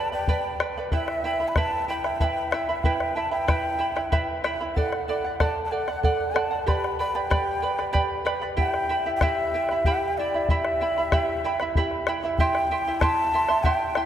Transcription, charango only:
Already playing: B4 D5 G5 B5
0.12 B4 D5 B5
0.28 G4 B4 D5 G5 B5
0.60 B4 D5 G5 B5
0.77 B4 D5 B5
0.92 E4 B4 E5 G5 B5
1.24 E4 E5 G5 B5
1.40 E4 E5 B5
1.57 E4 B4 E5 G5 B5
1.88 E4 E5 G5 B5
2.04 E4 E5 B5
2.20 E4 B4 E5 G5 B5
2.52 E4 E5 G5 B5
2.69 E4 E5 B5
2.85 E4 B4 E5 G5 B5
3.16 E4 E5 G5 B5
3.31 E4 E5 B5
3.48 E4 B4 E5 G5 B5
3.79 E4 E5 G5 B5
3.96 E4 E5 B5
4.12 E4 B4 E5 G5 B5
4.44 E4 E5 G5 B5
4.61 E4 E5 B5
4.76 A4 D5 F#5
5.08 A4 D5 F#5
5.24 D5 F#5
5.40 A4 D5 F#5
5.72 A4 D5 F#5
5.88 D5 F#5
6.03 A4 D5 F#5
6.34 A4 D5 F#5
6.51 D5 F#5
6.66 G4 B4 D5 G5 B5
6.99 B4 D5 G5 B5
7.15 B4 D5 B5
7.30 G4 B4 D5 G5 B5
7.62 B4 D5 G5 B5
7.78 B4 D5 B5
7.93 G4 B4 D5 G5 B5
8.25 B4 D5 G5 B5
8.42 B4 D5 B5
8.57 E4 G4 E5 G5 B5
8.89 E4 E5 G5 B5
9.06 E4 E5 B5
9.22 E4 G4 E5 G5 B5
9.54 E4 E5 G5 B5
9.71 E4 E5 B5
9.86 E4 G4 E5 G5 B5
10.19 E4 E5 G5 B5
10.34 E4 E5 B5
10.50 E4 G4 E5 G5 B5
10.81 E4 E5 G5 B5
10.98 E4 E5 B5
11.12 E4 G4 E5 G5 B5
11.44 E4 E5 G5 B5
11.61 E4 E5 B5
11.77 E4 G4 E5 G5 B5
12.07 E4 E5 G5 B5
12.23 E4 E5 B5
12.40 E4 G4 E5 G5 C6
12.71 E4 E5 G5 C6
12.87 E4 E5 C6
13.02 E4 G4 E5 G5 C6
13.33 E4 E5 G5 C6
13.49 E4 E5 C6
13.65 E4 G4 E5 G5 C6
13.96 E4 E5 G5 C6

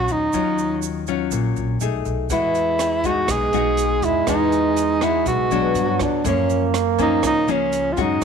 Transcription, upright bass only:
0.09 D#2
0.34 D#2
1.31 A#1
1.57 A#1
1.81 B1
2.06 B1
2.30 E2
3.28 B1
3.53 B1
4.02 E2
4.27 E2
5.26 B1
5.50 B1
5.75 G2
6.00 C#2
6.24 F#2
7.23 C#2
7.47 C#2
7.97 F#2

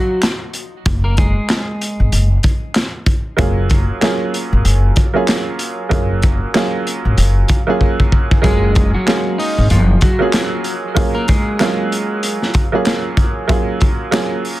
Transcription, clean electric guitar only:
Already playing: F#3 F#4
1.04 A#3 A#4
1.18 G#3 G#4
8.43 G#3 G#4
8.94 F#3 F#4
9.38 D#4 D#5
9.71 F3 F4
10.03 F#3 F#4
11.15 A#3 A#4
11.28 G#3 G#4

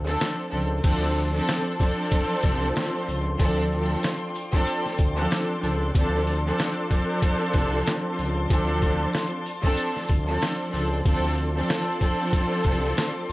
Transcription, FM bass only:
Already playing: D2
0.53 C#2
0.84 D2
2.44 C2
3.09 C#2
3.40 D2
5.00 D2
5.64 C#2
5.95 D2
7.55 C2
8.19 C#2
8.50 D2
10.10 D2
10.74 C#2
11.06 D2
12.65 C2

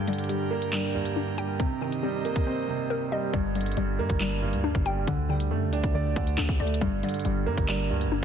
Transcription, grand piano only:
Already playing: G2
0.08 D3
0.29 G3
0.51 A#3
0.73 D4
0.95 G2
1.38 G3
1.60 C3
1.81 D#3
2.03 G3
2.25 A#3
2.47 C4
2.68 C3
3.12 G3
3.34 G2
3.55 D3
3.77 G3
3.99 A#3
4.20 D4
4.42 G2
4.86 G3
5.07 D3
5.29 G3
5.51 A3
5.73 D4
5.95 D5
6.16 D3
6.60 A3
6.82 G2
7.03 D3
7.25 G3
7.46 A#3
7.68 D4
7.90 G2

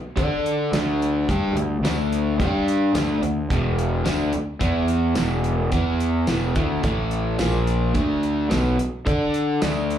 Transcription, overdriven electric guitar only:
0.16 D4 A4 D5
0.74 D3 A3 D4
1.29 G3 D4 G4
1.57 D3 A3
1.84 D3 A3 D4
2.40 G3 D4 G4
2.95 D3 A3 D4
3.23 D3 A3
3.50 E2 B2 E3
4.04 D3 A3 D4
4.33 muted overdriven electric guitar stroke
4.60 E3 B3 E4
5.16 E2 B2 E3
5.72 E3 B3 E4
6.28 E2 B2 E3
6.55 D3 A3 D4
6.83 A2 E3 A3
7.39 A#2 F3 A#3
7.94 D3 A3 D4
8.50 B2 F#3 B3
8.79 muted overdriven electric guitar stroke
9.06 D4 A4 D5
9.62 D3 A3 D4

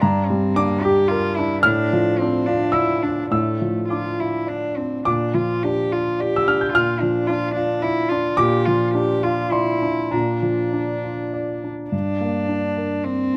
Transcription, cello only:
0.00 D4
0.27 C4
0.55 A#3
0.82 G4
1.09 F4
1.36 E4
1.64 D4
2.19 C4
2.47 D4
2.74 E4
3.03 D4
3.32 A3
3.89 F4
4.20 E4
4.48 D4
4.77 C4
5.07 D4
5.35 F4
5.64 G4
5.93 F4
6.21 G4
6.73 F4
7.00 D4
7.27 F4
7.55 D4
7.82 E4
8.09 F4
8.39 G4
8.66 F4
8.95 G4
9.24 F4
9.52 E4
10.12 D4
11.91 D4
13.05 C4

